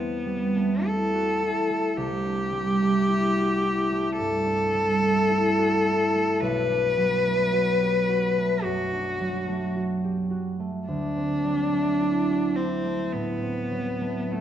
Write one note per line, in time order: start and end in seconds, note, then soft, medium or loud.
0.00 1.47 E2 soft
0.00 2.01 E3 soft
0.00 0.24 G3 soft
0.00 0.54 A3 soft
0.00 0.87 B3 medium
0.00 3.86 C4 soft
0.00 0.84 E4 soft
0.25 2.51 G3 soft
0.56 1.69 A3 soft
0.85 1.41 E4 soft
0.85 1.98 A4 medium
1.14 1.61 F#4 soft
1.42 3.07 E4 soft
1.70 2.80 A3 soft
1.97 5.87 C2 soft
1.97 4.17 G4 medium
2.25 4.45 D4 soft
2.53 4.73 G3 soft
2.81 3.91 A3 soft
3.08 3.63 E4 soft
3.37 3.83 F#4 soft
3.64 5.28 E4 soft
3.92 5.01 A3 soft
4.18 6.46 G2 soft
4.18 6.42 A4 medium
4.46 6.69 D4 soft
4.74 6.46 G3 soft
5.02 6.14 A3 soft
5.29 5.85 E4 soft
5.58 6.05 F#4 soft
5.86 6.46 E4 soft
6.16 7.25 A3 soft
6.40 10.31 B1 soft
6.40 8.65 B4 medium
6.70 8.91 D4 soft
6.98 9.19 F#3 soft
7.27 8.36 A3 soft
7.53 8.08 F#4 soft
7.81 8.27 G4 soft
8.09 9.75 F#4 soft
8.37 9.46 A3 soft
8.63 10.93 F#2 soft
8.63 9.75 F#4 medium
8.92 12.82 D4 soft
9.20 11.43 F#3 soft
9.48 10.59 A3 soft
9.76 10.29 F#4 soft
10.04 10.51 G4 soft
10.30 12.28 F#4 soft
10.60 11.72 A3 soft
10.88 14.41 D2 soft
10.88 12.57 D4 medium
11.16 13.41 C4 soft
11.44 13.70 F#3 soft
11.73 12.84 A3 soft
12.00 12.56 E4 soft
12.29 12.76 F#4 soft
12.55 13.14 C4 medium
12.55 14.30 E4 soft
12.85 14.00 A3 soft
13.13 14.41 A2 soft
13.13 14.33 B3 medium
13.42 14.41 C4 soft
13.71 14.41 F#3 soft
14.01 14.41 A3 soft
14.31 14.41 A3 medium
14.31 14.41 E4 soft